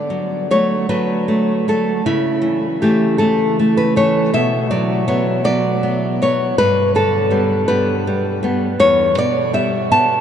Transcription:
Already playing: D3 D5
0.10 F#3
0.51 F#3 A3 C#5
0.89 F#3 A3 B4
1.28 A3
1.68 F#3 A3 A4
2.06 C#3 E4
2.42 E3
2.82 E3 A3 G4
3.18 E3 A3 A4
3.59 A3
3.77 B4
3.96 E3 A3 C#5
4.34 B2 E5
4.71 F#3 D5
5.08 F#3 B3 C#5
5.44 F#3 B3 D5
5.83 B3
6.22 F#3 B3 C#5
6.58 G2 B4
6.95 D3 A4
7.31 G3 B3
7.68 G3 B3 B4
8.07 G3
8.43 G3 B3
8.80 E2 C#5
9.17 B2 D5
9.53 G3 B3 E5
9.91 G3 B3 A5

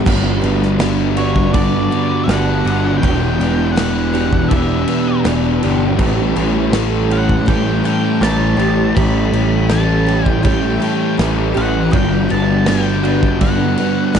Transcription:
0.04 G1 G2 D3 G3 B3 D4, kick, crash
0.09 F#4
0.42 G1 B3, crash
0.62 snare
0.79 G2 D3 G3 B3, snare, crash
1.17 B3 D4 F#4 C#5, crash
1.36 kick
1.52 G2 D3 G3 B3 D5, kick, crash
1.56 D4 F#4
1.91 D3 G3 B3, crash
2.24 G1 G2 G3 F#5
2.28 D3 G3 B3 D4 F#4, snare, crash
2.65 G1 B3 D4 F#4, crash
2.98 E2 E3 G5
3.02 E1 B2 E3 B3 D4 G4, kick, crash
3.39 E1 E3, crash
3.72 E2 B3 F#5
3.77 B2 E3, snare, crash
4.14 B3 D4 G4, crash
4.33 kick
4.48 E2 B2 E3 B3 D4 E5, kick, crash
4.53 G4
4.87 B2 E3 B3, crash
5.24 E1 E2 B2 E3 B3 D4 G4, snare, crash
5.62 G1 B3 D4 G4, crash
5.97 A1 A2 E3 G3 A3 C#4, kick, crash
6.01 G4
6.36 A1 E3, crash
6.71 A2 E3 A3, snare, crash
7.10 G3 C#4 G4 F#5, crash
7.29 kick
7.47 A2 E3 G3 A3 C#4 G4 G5, kick, crash
7.84 E3 A3 G5, crash
8.21 A1 A2 E3 G3 A3 C#4 G4 A5, snare, crash
8.57 A1 C#4 G4, crash
8.61 G3
8.95 A1 A2 E3 G3 A3 C#4 G4 B5, kick, crash
9.33 A1 E3, crash
9.70 A2 E3 A3 A5, snare, crash
10.07 G3 C#4 G4, crash
10.26 G5, kick
10.45 A2 E3 G3 A3 C#4 G4 G5, kick, crash
10.80 A3, crash
10.84 E3
11.19 A1 A2 E3 G3 A3 C#4 G4, snare, crash
11.55 A1 G3 C#4 G4 F#5, crash
11.93 G1 G2 D3 G3 B3 D4 F#4 G5, kick, crash
12.29 G1 B3 A5, crash
12.66 G2 D3 G3 B3 G5, snare, crash
13.03 B3 D4 F#4, crash
13.23 kick
13.40 G2 D3 G3 B3 D4 F#4 F#5, kick, crash
13.78 G3 B3, crash
13.82 D3
14.13 G1 G2 G3 B3 D4, snare, crash

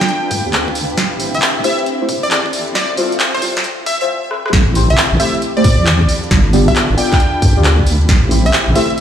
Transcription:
Already playing: D4 F4 A4 B4 G5 B5
0.01 kick, snare, closed hi-hat
0.09 closed hi-hat
0.31 G2, kick, open hi-hat
0.46 D2 B3 F4 G4 D5
0.53 clap, closed hi-hat
0.68 kick
0.75 open hi-hat
0.90 closed hi-hat
0.97 A1 C4 E4 G4, kick, snare, closed hi-hat
1.20 A3 E4 G4 C5, open hi-hat
1.34 C2 E5, closed hi-hat
1.39 A4 E5, clap, closed hi-hat
1.57 A1
1.64 A3 E4 G4 C5 E5, open hi-hat
1.79 closed hi-hat
1.86 closed hi-hat
2.01 A3 E4 G4 C5
2.09 A2, kick, open hi-hat
2.23 E2 D5
2.31 D5, clap, closed hi-hat
2.46 kick
2.53 open hi-hat
2.68 closed hi-hat
2.75 D1 F4 C5 D5, kick, snare, closed hi-hat
2.97 G3 E4 F4 C5, open hi-hat
3.12 F1, closed hi-hat
3.20 clap, closed hi-hat
3.34 D1 C5
3.42 G3 E4 F4 C5, open hi-hat
3.57 kick, snare, closed hi-hat
3.64 closed hi-hat
3.86 D2 E5, kick, open hi-hat
4.01 A1 G3 E4 F4 C5 E5
4.31 cross-stick
4.46 cross-stick
4.53 A1 C4 E4 G4 B5, kick, snare, closed hi-hat
4.75 A3 E4 G4 C5, open hi-hat
4.90 C2 E5, closed hi-hat
4.98 clap, closed hi-hat
5.12 A1
5.20 A3 E4 G4 C5 E5, open hi-hat
5.35 closed hi-hat
5.42 closed hi-hat
5.57 A3 E4 G4 C5 D5
5.64 A2, kick, open hi-hat
5.79 E2
5.87 clap, closed hi-hat
6.01 kick
6.09 D4 F4 A4, open hi-hat
6.24 closed hi-hat
6.31 G1, kick, snare, closed hi-hat
6.53 B3 F4 G4 D5, open hi-hat
6.68 B1 E5, closed hi-hat
6.76 clap, closed hi-hat
6.90 G1
6.97 B3 F4 G4 D5 G5, open hi-hat
7.12 kick, clap, open hi-hat
7.20 closed hi-hat
7.42 G2, kick, open hi-hat
7.57 D2 B3 F4 G4 D5
7.64 clap, closed hi-hat
7.79 kick
7.87 open hi-hat
8.01 closed hi-hat
8.09 A1 C4 E4 G4, kick, snare, closed hi-hat
8.31 A3 E4 G4 C5, open hi-hat
8.46 C2 E5, closed hi-hat
8.53 clap, closed hi-hat
8.68 A1
8.75 A3 E4 G4 C5 E5, open hi-hat
8.90 closed hi-hat

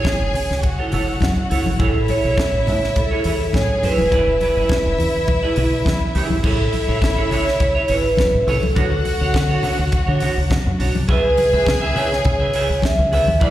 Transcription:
Already playing: G#4 C#5 G#5
0.05 muted clean electric guitar stroke, kick, snare, closed hi-hat, high conga
0.21 F#1, muted clean electric guitar stroke
0.34 open hi-hat, low conga
0.50 C#2, muted clean electric guitar stroke, snare
0.63 F#4 F#5, muted clean electric guitar stroke, kick, closed hi-hat, muted conga
0.79 E4 A4 C#5
0.92 F#1 E4 A4 C#5, open hi-hat, low conga
1.08 muted clean electric guitar stroke
1.21 F#2, kick, snare, closed hi-hat, high conga
1.37 muted clean electric guitar stroke
1.50 C#2 E4 A4 C#5, open hi-hat
1.66 G#1, muted clean electric guitar stroke, high conga
1.79 A1 E4 G#4 A4 C#5 E5, kick, closed hi-hat, muted conga
1.95 muted clean electric guitar stroke
2.08 E4 G#4 C#5, open hi-hat, muted conga
2.24 B1 E4 G#4 C#5
2.38 muted clean electric guitar stroke, kick, snare, closed hi-hat, high conga
2.53 A1, muted clean electric guitar stroke
2.67 A2, open hi-hat, low conga
2.82 muted clean electric guitar stroke, snare
2.95 A4, muted clean electric guitar stroke, kick, closed hi-hat, muted conga
3.11 E4 G#4 C#5
3.24 E2 E4 G#4 C#5, open hi-hat
3.40 muted clean electric guitar stroke
3.53 A2 G#4 C#5 G#5, kick, snare, closed hi-hat, high conga
3.70 muted clean electric guitar stroke
3.83 F#2 E4 G#4 B4 C#5, open hi-hat
3.98 D#1, muted clean electric guitar stroke, high conga
4.12 E1 E4 G#4 D5 E5, kick, closed hi-hat, muted conga
4.28 muted clean electric guitar stroke
4.40 E4 G#4 D5, open hi-hat, muted conga
4.57 F#1 E4 G#4 D5
4.69 muted clean electric guitar stroke, kick, snare, closed hi-hat, high conga
4.86 E1, muted clean electric guitar stroke
4.98 E2, open hi-hat, low conga
5.15 muted clean electric guitar stroke
5.28 muted clean electric guitar stroke, kick, closed hi-hat, muted conga
5.43 E4 G#4 D5
5.56 B1 E4 G#4 D5, open hi-hat, low conga
5.72 muted clean electric guitar stroke
5.85 E2, kick, snare, closed hi-hat, high conga
6.01 muted clean electric guitar stroke
6.15 C#2 E4 G#4 D5, open hi-hat
6.30 G#1, muted clean electric guitar stroke, high conga
6.43 A1 E4 G#4 A4 C#5 E5, kick, crash
6.58 muted clean electric guitar stroke
6.72 muted clean electric guitar stroke, open hi-hat, muted conga
6.87 A1 E4 G#4 C#5
7.01 G#1, muted clean electric guitar stroke, kick, snare, closed hi-hat, high conga
7.17 E4 G#4 C#5
7.30 E4 G#4 C#5, open hi-hat, low conga
7.46 muted clean electric guitar stroke, snare
7.59 C#5, muted clean electric guitar stroke, kick, closed hi-hat, muted conga
7.75 E4 G#4 C#5
7.88 G#1 E4 G#4 B4 C#5, open hi-hat
8.03 muted clean electric guitar stroke
8.17 muted clean electric guitar stroke, kick, snare, closed hi-hat, high conga
8.33 A1, muted clean electric guitar stroke
8.47 C2 E4 G#4 A4 C#5, open hi-hat
8.62 C#2, muted clean electric guitar stroke, high conga
8.75 D2 D4 F#4 C#5 F#5, kick, closed hi-hat, muted conga
8.91 muted clean electric guitar stroke
9.05 muted clean electric guitar stroke, open hi-hat, muted conga
9.20 D2 D4 F#4 C#5
9.34 D3, kick, snare, closed hi-hat, high conga
9.49 D4 F#4 C#5
9.63 D4 F#4 C#5, open hi-hat, low conga
9.78 D2, muted clean electric guitar stroke
9.91 muted clean electric guitar stroke, muted fingered electric bass stroke, kick, closed hi-hat, muted conga
10.07 D3 D4 F#4 C#5
10.20 D4 F#4 C#5, open hi-hat, low conga
10.37 D2, muted clean electric guitar stroke
10.50 kick, snare, closed hi-hat, high conga
10.66 F#2, muted clean electric guitar stroke
10.79 B1 D4 F#4 C#5, open hi-hat
10.94 C2, muted clean electric guitar stroke, high conga
11.08 C#2 G#4 B4 E5 G#5, kick, closed hi-hat
11.24 muted clean electric guitar stroke
11.37 muted clean electric guitar stroke, open hi-hat, muted conga
11.53 C#2 G#4 B4 E5
11.66 C#2, muted clean electric guitar stroke, kick, snare, closed hi-hat, high conga
11.81 G#4 B4 E5
11.94 G#4 B4 C#5 E5, open hi-hat, low conga
12.11 muted clean electric guitar stroke, snare
12.25 C#3 C#5, muted clean electric guitar stroke, kick, closed hi-hat, muted conga
12.40 G#4 B4 E5
12.53 G#4 B4 E5, open hi-hat
12.69 C#2, muted clean electric guitar stroke
12.82 E5, kick, snare, closed hi-hat, high conga
12.98 C#2, muted clean electric guitar stroke
13.12 D2 G#4 B4 E5, open hi-hat
13.27 D#2, muted clean electric guitar stroke, high conga
13.40 E2 E4 G#4 B4 D5 B5, kick, closed hi-hat, muted conga

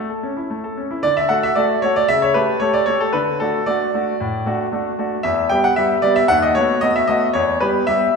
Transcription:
Already playing: A5
0.10 A4
0.23 C#4
0.37 E4
0.50 A3
0.64 A4
0.77 C#4
0.91 E4
1.03 D3 D5
1.17 E5
1.29 A3 F#4 A4 F#5
1.43 E5
1.55 A3 F#4 A4 D5
1.82 A3 F#4 A4 C#5
1.96 D5
2.08 C#3 E5
2.22 C#5
2.34 A3 G4 A4 B4
2.60 A3 G4 A4 C#5
2.74 D5
2.86 A3 G4 A4 C#5
3.00 A4
3.13 D3 B4
3.40 A3 D4 F#4 A4
3.66 A3 D4 F#4 D5
3.94 A3 D4 F#4
4.20 A2
4.46 A3 D4 F#4
4.72 A3 D4 F#4
4.99 A3 D4 F#4
5.23 E2 E5
5.49 G3 B3 G4 G5
5.64 F#5
5.76 G3 B3 G4 E5
6.02 G3 B3 G4 D5
6.16 E5
6.28 D#2 F#5
6.42 D#5
6.55 A3 B3 F#4 C#5
6.81 A3 B3 F#4 D#5
6.96 E5
7.08 A3 B3 F#4 D#5
7.33 E2 C#5
7.60 G3 B3 G4 B4
7.87 G3 B3 G4 E5

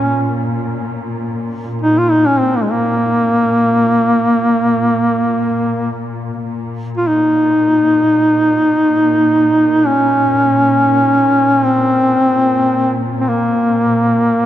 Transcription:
Already playing: A#2 C#4
1.82 D#4
1.98 F4
2.11 D#4
2.26 C#4
2.39 C4
2.56 A#3
2.62 G#3
2.72 A#3
6.47 A#2
6.97 F4
7.07 D#4
9.87 C#4
11.65 C4
13.20 C4
13.28 A#3

